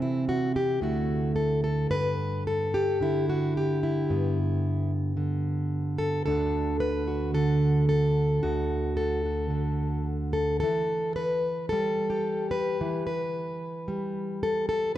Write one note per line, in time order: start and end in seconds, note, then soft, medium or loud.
0.00 0.78 C3 medium
0.00 0.78 E3 soft
0.00 0.55 C4 medium
0.00 0.28 E4 medium
0.29 0.55 F#4 medium
0.56 0.82 G4 medium
0.81 1.90 D2 medium
0.81 3.00 D3 soft
0.81 1.88 A3 soft
0.81 1.89 E4 soft
0.81 1.35 F#4 medium
1.36 1.63 A4 medium
1.64 1.90 A4 medium
1.91 4.06 G2 medium
1.91 2.46 B4 loud
2.47 3.01 A4 medium
2.74 3.28 G4 medium
3.01 5.16 D3 medium
3.01 3.82 E4 medium
3.29 3.56 F#4 medium
3.57 4.38 G4 medium
3.83 4.91 E4 medium
4.10 6.23 G2 medium
4.10 6.24 B3 soft
5.17 6.26 D3 medium
5.98 6.24 A4 medium
6.26 8.42 D2 medium
6.26 7.34 D3 medium
6.26 8.40 D4 medium
6.26 7.07 F#4 medium
6.26 6.80 A4 loud
6.80 7.34 B4 loud
7.08 8.43 F#4 soft
7.34 9.49 D3 medium
7.34 7.88 A4 loud
7.89 8.96 A4 medium
8.43 10.62 D2 medium
8.43 9.24 F#4 medium
8.97 10.06 A4 medium
9.26 10.66 F#4 soft
9.50 10.61 D3 medium
10.33 10.59 A4 medium
10.60 12.81 E3 medium
10.60 11.15 A4 loud
11.16 11.69 B4 loud
11.69 12.77 G3 medium
11.69 12.51 A4 loud
12.10 13.06 G4 medium
12.51 13.05 B4 loud
12.81 14.93 E3 medium
13.07 14.42 B4 medium
13.88 14.92 G3 medium
14.43 14.68 A4 loud
14.69 14.95 A4 medium